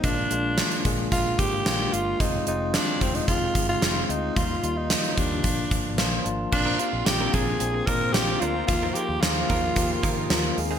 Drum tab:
CC |----------------|----------------|----------------|x---------------|
HH |x-x-xxx-x-x-x-x-|x-x-x-xxx-x-x-x-|x-x-xxx-x-x-x-x-|--x-x-x-x-x-x-x-|
SD |----o-------o---|----o-------o---|----o-------o---|----o-------o---|
BD |o-----o-o-o-----|o-----o-o-o-----|o-----o-o-o-----|o-----o---o-----|

CC |----------------|
HH |x-x-x-x-x-x-x-o-|
SD |----o-------o---|
BD |o-----o-o-o-----|